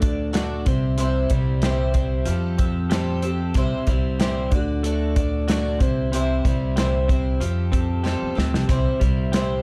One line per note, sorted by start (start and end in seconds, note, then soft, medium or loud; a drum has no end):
0.00 0.63 D2 medium
0.00 0.67 D3 medium
0.00 0.67 A3 medium
0.00 0.32 D4 soft
0.00 0.32 F#4 soft
0.00 0.33 D5 soft
0.00 kick medium
0.00 closed hi-hat medium
0.33 0.66 D3 medium
0.33 0.66 A3 medium
0.33 0.66 D4 medium
0.33 0.66 F#4 medium
0.33 0.66 D5 medium
0.33 snare loud
0.33 closed hi-hat medium
0.66 1.27 C2 medium
0.66 0.97 C3 medium
0.66 0.99 G3 soft
0.66 0.99 C4 soft
0.66 0.99 E4 soft
0.66 0.98 C5 soft
0.66 kick loud
0.66 closed hi-hat medium
0.98 1.30 C3 medium
0.98 1.31 E3 medium
0.98 1.31 G3 medium
0.98 1.31 C4 medium
0.98 1.31 E4 medium
0.98 1.29 C5 medium
0.98 closed hi-hat medium
1.30 2.23 C2 medium
1.30 1.64 G3 soft
1.30 1.64 C4 soft
1.30 1.63 E4 soft
1.30 1.62 C5 medium
1.30 kick medium
1.30 closed hi-hat medium
1.62 1.95 C3 medium
1.62 1.96 E3 medium
1.62 1.95 G3 medium
1.62 1.95 C4 medium
1.62 1.94 E4 medium
1.62 2.27 G4 medium
1.62 1.94 C5 medium
1.62 snare medium
1.62 closed hi-hat medium
1.94 2.27 C4 soft
1.94 2.27 E4 soft
1.94 2.27 C5 soft
1.94 kick medium
1.94 closed hi-hat soft
2.26 3.52 F2 medium
2.26 3.55 F3 medium
2.26 2.59 G3 medium
2.26 2.60 C4 medium
2.26 2.60 G4 medium
2.26 closed hi-hat medium
2.30 2.58 A4 medium
2.59 2.91 C4 soft
2.59 2.91 G4 soft
2.59 2.91 A4 soft
2.59 kick medium
2.59 closed hi-hat medium
2.91 3.23 F3 medium
2.91 3.23 G3 medium
2.91 3.24 C4 medium
2.91 3.23 G4 medium
2.91 3.22 A4 medium
2.91 snare loud
2.91 closed hi-hat medium
3.22 3.56 C4 soft
3.22 3.56 G4 medium
3.22 3.55 A4 medium
3.22 closed hi-hat medium
3.54 3.70 C2 medium
3.54 3.88 C3 medium
3.54 3.88 E3 medium
3.54 3.88 G3 medium
3.54 3.88 C4 medium
3.54 3.88 E4 medium
3.54 3.87 C5 medium
3.54 kick loud
3.54 closed hi-hat medium
3.87 4.48 C2 medium
3.87 4.20 G3 soft
3.87 4.20 C4 soft
3.87 4.20 E4 soft
3.87 4.20 C5 medium
3.87 kick medium
3.87 closed hi-hat medium
4.20 4.52 C3 medium
4.20 4.52 E3 medium
4.20 4.52 G3 medium
4.20 4.53 C4 medium
4.20 4.53 E4 medium
4.20 4.52 G4 medium
4.20 4.53 C5 medium
4.20 snare medium
4.20 closed hi-hat medium
4.51 5.76 D2 medium
4.51 5.80 D3 medium
4.51 4.85 D5 soft
4.51 kick medium
4.51 closed hi-hat medium
4.55 4.84 D4 soft
4.55 4.85 F#4 soft
4.84 5.16 A3 medium
4.84 5.16 D4 medium
4.84 5.17 F#4 medium
4.84 5.15 D5 medium
4.84 closed hi-hat medium
5.16 5.48 D4 soft
5.16 5.49 F#4 soft
5.16 5.48 D5 medium
5.16 kick medium
5.16 closed hi-hat medium
5.48 5.80 D3 medium
5.48 5.80 A3 medium
5.48 5.81 D4 medium
5.48 5.81 F#4 medium
5.48 5.80 D5 medium
5.48 snare medium
5.48 closed hi-hat medium
5.79 6.41 C2 medium
5.79 6.11 C3 medium
5.79 6.13 C4 soft
5.79 6.13 E4 soft
5.79 6.12 C5 soft
5.79 kick medium
5.79 closed hi-hat medium
5.83 6.12 G3 soft
6.13 6.45 C3 medium
6.13 6.45 E3 medium
6.13 6.45 G3 medium
6.13 6.45 C4 medium
6.13 6.45 E4 medium
6.13 6.45 C5 medium
6.13 closed hi-hat medium
6.45 7.37 C2 medium
6.45 6.77 G3 soft
6.45 6.77 C4 soft
6.45 6.77 E4 soft
6.45 6.77 C5 soft
6.45 kick medium
6.45 closed hi-hat medium
6.76 7.09 C3 medium
6.76 7.09 E3 medium
6.76 7.09 G3 medium
6.76 7.09 C4 medium
6.76 7.10 E4 medium
6.76 7.40 G4 medium
6.76 7.09 C5 medium
6.76 snare loud
6.76 closed hi-hat medium
7.08 7.39 G3 soft
7.08 7.40 C4 medium
7.08 7.41 E4 soft
7.08 7.41 C5 soft
7.08 kick medium
7.08 closed hi-hat medium
7.12 7.40 C4 soft
7.40 8.17 F2 medium
7.40 8.69 F3 medium
7.40 7.73 G3 medium
7.40 7.73 C4 medium
7.40 7.72 G4 medium
7.40 7.71 A4 medium
7.40 closed hi-hat medium
7.72 8.04 C4 soft
7.72 8.05 G4 soft
7.72 8.04 A4 soft
7.72 kick medium
7.72 closed hi-hat medium
8.04 8.36 F3 medium
8.04 8.37 G3 medium
8.04 8.36 C4 medium
8.04 8.35 G4 medium
8.04 8.34 A4 medium
8.04 snare soft
8.22 8.36 E2 medium
8.35 8.52 D2 medium
8.35 8.69 C4 soft
8.35 8.69 G4 soft
8.35 8.68 A4 medium
8.35 snare medium
8.53 8.67 C2 medium
8.53 snare medium
8.69 8.84 C2 medium
8.69 9.01 C3 medium
8.69 9.01 E3 medium
8.69 9.02 G3 medium
8.69 9.02 C4 medium
8.69 9.01 E4 medium
8.69 9.00 C5 medium
8.69 kick medium
8.69 closed hi-hat medium
9.00 9.62 C2 medium
9.00 9.62 G3 medium
9.00 9.34 C4 soft
9.00 9.34 E4 soft
9.00 9.33 C5 soft
9.00 kick medium
9.00 closed hi-hat medium
9.04 9.34 G3 soft
9.32 9.62 C3 medium
9.32 9.62 E3 medium
9.32 9.62 G3 medium
9.32 9.62 C4 medium
9.32 9.62 G4 medium
9.32 9.62 C5 medium
9.32 snare loud
9.32 closed hi-hat medium
9.36 9.62 E4 medium